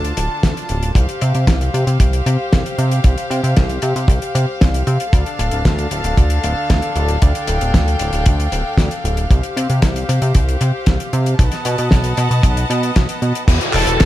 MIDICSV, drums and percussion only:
0, 0, Header, 1, 2, 480
1, 0, Start_track
1, 0, Tempo, 521739
1, 881, Time_signature, 4, 2, 24, 8
1, 12929, End_track
2, 0, Start_track
2, 0, Title_t, "Drums"
2, 42, Note_on_c, 9, 42, 51
2, 134, Note_off_c, 9, 42, 0
2, 156, Note_on_c, 9, 42, 74
2, 248, Note_off_c, 9, 42, 0
2, 398, Note_on_c, 9, 36, 97
2, 398, Note_on_c, 9, 38, 127
2, 401, Note_on_c, 9, 42, 91
2, 490, Note_off_c, 9, 36, 0
2, 490, Note_off_c, 9, 38, 0
2, 493, Note_off_c, 9, 42, 0
2, 526, Note_on_c, 9, 42, 50
2, 618, Note_off_c, 9, 42, 0
2, 634, Note_on_c, 9, 42, 50
2, 726, Note_off_c, 9, 42, 0
2, 760, Note_on_c, 9, 42, 59
2, 852, Note_off_c, 9, 42, 0
2, 876, Note_on_c, 9, 36, 120
2, 882, Note_on_c, 9, 42, 86
2, 968, Note_off_c, 9, 36, 0
2, 974, Note_off_c, 9, 42, 0
2, 1000, Note_on_c, 9, 42, 49
2, 1092, Note_off_c, 9, 42, 0
2, 1117, Note_on_c, 9, 42, 75
2, 1209, Note_off_c, 9, 42, 0
2, 1238, Note_on_c, 9, 42, 52
2, 1330, Note_off_c, 9, 42, 0
2, 1355, Note_on_c, 9, 42, 91
2, 1356, Note_on_c, 9, 36, 102
2, 1364, Note_on_c, 9, 38, 120
2, 1447, Note_off_c, 9, 42, 0
2, 1448, Note_off_c, 9, 36, 0
2, 1456, Note_off_c, 9, 38, 0
2, 1482, Note_on_c, 9, 42, 57
2, 1574, Note_off_c, 9, 42, 0
2, 1604, Note_on_c, 9, 42, 74
2, 1696, Note_off_c, 9, 42, 0
2, 1723, Note_on_c, 9, 42, 53
2, 1815, Note_off_c, 9, 42, 0
2, 1839, Note_on_c, 9, 36, 123
2, 1839, Note_on_c, 9, 42, 94
2, 1931, Note_off_c, 9, 36, 0
2, 1931, Note_off_c, 9, 42, 0
2, 1962, Note_on_c, 9, 42, 55
2, 2054, Note_off_c, 9, 42, 0
2, 2083, Note_on_c, 9, 42, 77
2, 2175, Note_off_c, 9, 42, 0
2, 2323, Note_on_c, 9, 38, 124
2, 2325, Note_on_c, 9, 42, 96
2, 2329, Note_on_c, 9, 36, 110
2, 2415, Note_off_c, 9, 38, 0
2, 2417, Note_off_c, 9, 42, 0
2, 2421, Note_off_c, 9, 36, 0
2, 2447, Note_on_c, 9, 42, 51
2, 2539, Note_off_c, 9, 42, 0
2, 2563, Note_on_c, 9, 42, 55
2, 2655, Note_off_c, 9, 42, 0
2, 2682, Note_on_c, 9, 42, 56
2, 2774, Note_off_c, 9, 42, 0
2, 2797, Note_on_c, 9, 42, 96
2, 2800, Note_on_c, 9, 36, 122
2, 2889, Note_off_c, 9, 42, 0
2, 2892, Note_off_c, 9, 36, 0
2, 2922, Note_on_c, 9, 42, 49
2, 3014, Note_off_c, 9, 42, 0
2, 3045, Note_on_c, 9, 42, 75
2, 3137, Note_off_c, 9, 42, 0
2, 3165, Note_on_c, 9, 42, 53
2, 3257, Note_off_c, 9, 42, 0
2, 3280, Note_on_c, 9, 42, 84
2, 3282, Note_on_c, 9, 38, 110
2, 3288, Note_on_c, 9, 36, 108
2, 3372, Note_off_c, 9, 42, 0
2, 3374, Note_off_c, 9, 38, 0
2, 3380, Note_off_c, 9, 36, 0
2, 3399, Note_on_c, 9, 42, 54
2, 3491, Note_off_c, 9, 42, 0
2, 3514, Note_on_c, 9, 42, 77
2, 3606, Note_off_c, 9, 42, 0
2, 3643, Note_on_c, 9, 42, 57
2, 3735, Note_off_c, 9, 42, 0
2, 3754, Note_on_c, 9, 36, 127
2, 3766, Note_on_c, 9, 42, 97
2, 3846, Note_off_c, 9, 36, 0
2, 3858, Note_off_c, 9, 42, 0
2, 3882, Note_on_c, 9, 42, 54
2, 3974, Note_off_c, 9, 42, 0
2, 4004, Note_on_c, 9, 42, 77
2, 4096, Note_off_c, 9, 42, 0
2, 4243, Note_on_c, 9, 38, 120
2, 4245, Note_on_c, 9, 42, 90
2, 4248, Note_on_c, 9, 36, 112
2, 4335, Note_off_c, 9, 38, 0
2, 4337, Note_off_c, 9, 42, 0
2, 4340, Note_off_c, 9, 36, 0
2, 4364, Note_on_c, 9, 42, 61
2, 4456, Note_off_c, 9, 42, 0
2, 4480, Note_on_c, 9, 42, 56
2, 4572, Note_off_c, 9, 42, 0
2, 4600, Note_on_c, 9, 42, 53
2, 4692, Note_off_c, 9, 42, 0
2, 4720, Note_on_c, 9, 36, 119
2, 4724, Note_on_c, 9, 42, 89
2, 4812, Note_off_c, 9, 36, 0
2, 4816, Note_off_c, 9, 42, 0
2, 4842, Note_on_c, 9, 42, 54
2, 4934, Note_off_c, 9, 42, 0
2, 4961, Note_on_c, 9, 42, 77
2, 5053, Note_off_c, 9, 42, 0
2, 5073, Note_on_c, 9, 42, 49
2, 5165, Note_off_c, 9, 42, 0
2, 5200, Note_on_c, 9, 36, 99
2, 5200, Note_on_c, 9, 38, 115
2, 5200, Note_on_c, 9, 42, 91
2, 5292, Note_off_c, 9, 36, 0
2, 5292, Note_off_c, 9, 38, 0
2, 5292, Note_off_c, 9, 42, 0
2, 5323, Note_on_c, 9, 42, 55
2, 5415, Note_off_c, 9, 42, 0
2, 5438, Note_on_c, 9, 42, 67
2, 5530, Note_off_c, 9, 42, 0
2, 5559, Note_on_c, 9, 42, 55
2, 5651, Note_off_c, 9, 42, 0
2, 5681, Note_on_c, 9, 36, 122
2, 5681, Note_on_c, 9, 42, 92
2, 5773, Note_off_c, 9, 36, 0
2, 5773, Note_off_c, 9, 42, 0
2, 5796, Note_on_c, 9, 42, 59
2, 5888, Note_off_c, 9, 42, 0
2, 5921, Note_on_c, 9, 42, 76
2, 6013, Note_off_c, 9, 42, 0
2, 6163, Note_on_c, 9, 38, 121
2, 6163, Note_on_c, 9, 42, 90
2, 6166, Note_on_c, 9, 36, 92
2, 6255, Note_off_c, 9, 38, 0
2, 6255, Note_off_c, 9, 42, 0
2, 6258, Note_off_c, 9, 36, 0
2, 6277, Note_on_c, 9, 42, 54
2, 6369, Note_off_c, 9, 42, 0
2, 6399, Note_on_c, 9, 42, 50
2, 6491, Note_off_c, 9, 42, 0
2, 6518, Note_on_c, 9, 42, 50
2, 6610, Note_off_c, 9, 42, 0
2, 6641, Note_on_c, 9, 42, 104
2, 6645, Note_on_c, 9, 36, 114
2, 6733, Note_off_c, 9, 42, 0
2, 6737, Note_off_c, 9, 36, 0
2, 6763, Note_on_c, 9, 42, 59
2, 6855, Note_off_c, 9, 42, 0
2, 6876, Note_on_c, 9, 42, 82
2, 6968, Note_off_c, 9, 42, 0
2, 7003, Note_on_c, 9, 42, 53
2, 7095, Note_off_c, 9, 42, 0
2, 7121, Note_on_c, 9, 36, 96
2, 7123, Note_on_c, 9, 42, 93
2, 7124, Note_on_c, 9, 38, 113
2, 7213, Note_off_c, 9, 36, 0
2, 7215, Note_off_c, 9, 42, 0
2, 7216, Note_off_c, 9, 38, 0
2, 7248, Note_on_c, 9, 42, 51
2, 7340, Note_off_c, 9, 42, 0
2, 7354, Note_on_c, 9, 42, 70
2, 7446, Note_off_c, 9, 42, 0
2, 7477, Note_on_c, 9, 42, 57
2, 7569, Note_off_c, 9, 42, 0
2, 7596, Note_on_c, 9, 42, 101
2, 7603, Note_on_c, 9, 36, 125
2, 7688, Note_off_c, 9, 42, 0
2, 7695, Note_off_c, 9, 36, 0
2, 7725, Note_on_c, 9, 42, 58
2, 7817, Note_off_c, 9, 42, 0
2, 7839, Note_on_c, 9, 42, 75
2, 7931, Note_off_c, 9, 42, 0
2, 8073, Note_on_c, 9, 36, 92
2, 8079, Note_on_c, 9, 38, 113
2, 8082, Note_on_c, 9, 42, 101
2, 8165, Note_off_c, 9, 36, 0
2, 8171, Note_off_c, 9, 38, 0
2, 8174, Note_off_c, 9, 42, 0
2, 8198, Note_on_c, 9, 42, 51
2, 8290, Note_off_c, 9, 42, 0
2, 8327, Note_on_c, 9, 42, 58
2, 8419, Note_off_c, 9, 42, 0
2, 8438, Note_on_c, 9, 42, 55
2, 8530, Note_off_c, 9, 42, 0
2, 8561, Note_on_c, 9, 36, 107
2, 8563, Note_on_c, 9, 42, 89
2, 8653, Note_off_c, 9, 36, 0
2, 8655, Note_off_c, 9, 42, 0
2, 8680, Note_on_c, 9, 42, 54
2, 8772, Note_off_c, 9, 42, 0
2, 8806, Note_on_c, 9, 42, 86
2, 8898, Note_off_c, 9, 42, 0
2, 8920, Note_on_c, 9, 42, 56
2, 9012, Note_off_c, 9, 42, 0
2, 9037, Note_on_c, 9, 42, 110
2, 9038, Note_on_c, 9, 36, 95
2, 9038, Note_on_c, 9, 38, 109
2, 9129, Note_off_c, 9, 42, 0
2, 9130, Note_off_c, 9, 36, 0
2, 9130, Note_off_c, 9, 38, 0
2, 9162, Note_on_c, 9, 42, 59
2, 9254, Note_off_c, 9, 42, 0
2, 9284, Note_on_c, 9, 42, 79
2, 9376, Note_off_c, 9, 42, 0
2, 9401, Note_on_c, 9, 42, 55
2, 9493, Note_off_c, 9, 42, 0
2, 9518, Note_on_c, 9, 42, 95
2, 9522, Note_on_c, 9, 36, 110
2, 9610, Note_off_c, 9, 42, 0
2, 9614, Note_off_c, 9, 36, 0
2, 9647, Note_on_c, 9, 42, 56
2, 9739, Note_off_c, 9, 42, 0
2, 9759, Note_on_c, 9, 42, 79
2, 9851, Note_off_c, 9, 42, 0
2, 9995, Note_on_c, 9, 42, 99
2, 9999, Note_on_c, 9, 38, 106
2, 10000, Note_on_c, 9, 36, 102
2, 10087, Note_off_c, 9, 42, 0
2, 10091, Note_off_c, 9, 38, 0
2, 10092, Note_off_c, 9, 36, 0
2, 10121, Note_on_c, 9, 42, 54
2, 10213, Note_off_c, 9, 42, 0
2, 10240, Note_on_c, 9, 42, 55
2, 10332, Note_off_c, 9, 42, 0
2, 10361, Note_on_c, 9, 42, 52
2, 10453, Note_off_c, 9, 42, 0
2, 10479, Note_on_c, 9, 36, 123
2, 10481, Note_on_c, 9, 42, 95
2, 10571, Note_off_c, 9, 36, 0
2, 10573, Note_off_c, 9, 42, 0
2, 10594, Note_on_c, 9, 42, 60
2, 10608, Note_on_c, 9, 38, 30
2, 10686, Note_off_c, 9, 42, 0
2, 10700, Note_off_c, 9, 38, 0
2, 10718, Note_on_c, 9, 42, 83
2, 10810, Note_off_c, 9, 42, 0
2, 10840, Note_on_c, 9, 42, 53
2, 10932, Note_off_c, 9, 42, 0
2, 10955, Note_on_c, 9, 38, 102
2, 10967, Note_on_c, 9, 36, 102
2, 10968, Note_on_c, 9, 42, 95
2, 11047, Note_off_c, 9, 38, 0
2, 11059, Note_off_c, 9, 36, 0
2, 11060, Note_off_c, 9, 42, 0
2, 11075, Note_on_c, 9, 42, 60
2, 11167, Note_off_c, 9, 42, 0
2, 11199, Note_on_c, 9, 42, 81
2, 11291, Note_off_c, 9, 42, 0
2, 11326, Note_on_c, 9, 42, 55
2, 11418, Note_off_c, 9, 42, 0
2, 11439, Note_on_c, 9, 36, 120
2, 11440, Note_on_c, 9, 42, 108
2, 11531, Note_off_c, 9, 36, 0
2, 11532, Note_off_c, 9, 42, 0
2, 11565, Note_on_c, 9, 42, 64
2, 11657, Note_off_c, 9, 42, 0
2, 11688, Note_on_c, 9, 42, 86
2, 11780, Note_off_c, 9, 42, 0
2, 11805, Note_on_c, 9, 42, 53
2, 11897, Note_off_c, 9, 42, 0
2, 11921, Note_on_c, 9, 42, 98
2, 11925, Note_on_c, 9, 38, 108
2, 11926, Note_on_c, 9, 36, 104
2, 12013, Note_off_c, 9, 42, 0
2, 12017, Note_off_c, 9, 38, 0
2, 12018, Note_off_c, 9, 36, 0
2, 12042, Note_on_c, 9, 42, 66
2, 12134, Note_off_c, 9, 42, 0
2, 12164, Note_on_c, 9, 42, 53
2, 12256, Note_off_c, 9, 42, 0
2, 12285, Note_on_c, 9, 42, 59
2, 12377, Note_off_c, 9, 42, 0
2, 12400, Note_on_c, 9, 36, 116
2, 12400, Note_on_c, 9, 49, 106
2, 12408, Note_on_c, 9, 42, 104
2, 12492, Note_off_c, 9, 36, 0
2, 12492, Note_off_c, 9, 49, 0
2, 12500, Note_off_c, 9, 42, 0
2, 12521, Note_on_c, 9, 42, 59
2, 12613, Note_off_c, 9, 42, 0
2, 12635, Note_on_c, 9, 39, 85
2, 12639, Note_on_c, 9, 46, 110
2, 12727, Note_off_c, 9, 39, 0
2, 12731, Note_off_c, 9, 46, 0
2, 12762, Note_on_c, 9, 42, 61
2, 12854, Note_off_c, 9, 42, 0
2, 12883, Note_on_c, 9, 38, 117
2, 12883, Note_on_c, 9, 42, 106
2, 12888, Note_on_c, 9, 36, 111
2, 12888, Note_on_c, 9, 39, 95
2, 12929, Note_off_c, 9, 36, 0
2, 12929, Note_off_c, 9, 38, 0
2, 12929, Note_off_c, 9, 39, 0
2, 12929, Note_off_c, 9, 42, 0
2, 12929, End_track
0, 0, End_of_file